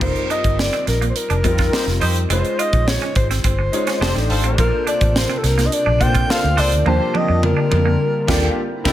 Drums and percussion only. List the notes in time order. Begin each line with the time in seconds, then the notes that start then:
0.01 kick, crash
0.16 closed hi-hat
0.30 closed hi-hat
0.44 kick, closed hi-hat
0.59 snare
0.73 closed hi-hat
0.87 snare, closed hi-hat
1.02 closed hi-hat
1.16 closed hi-hat
1.30 closed hi-hat
1.44 kick, closed hi-hat
1.58 kick, snare, closed hi-hat
1.73 snare
1.88 snare, closed hi-hat
2.01 open hi-hat
2.16 closed hi-hat
2.30 closed hi-hat
2.45 closed hi-hat
2.59 closed hi-hat
2.73 kick, closed hi-hat
2.88 snare
3.02 closed hi-hat
3.15 kick, closed hi-hat
3.31 snare, closed hi-hat
3.44 kick, closed hi-hat
3.73 closed hi-hat
3.87 snare, closed hi-hat
4.02 snare
4.16 snare, closed hi-hat
4.30 open hi-hat
4.44 closed hi-hat
4.58 kick, closed hi-hat
4.87 closed hi-hat
5.01 kick, closed hi-hat
5.16 snare
5.44 snare, closed hi-hat
5.59 snare, closed hi-hat
5.72 closed hi-hat
6.01 kick, closed hi-hat
6.15 kick, closed hi-hat
6.30 snare
6.58 open hi-hat
6.72 closed hi-hat
6.86 high tom
7.15 high tom
7.43 mid tom
7.72 mid tom
8.28 kick, snare, crash
8.85 kick, snare, crash